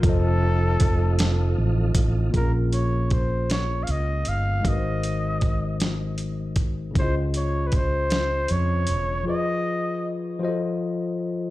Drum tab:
HH |x-xx-x|xxxxxx|xxxxxx|xxxxxx|
SD |---o--|---o--|---o--|---o--|
BD |o-o--o|o-o---|o-o--o|o-o---|

HH |------|
SD |------|
BD |------|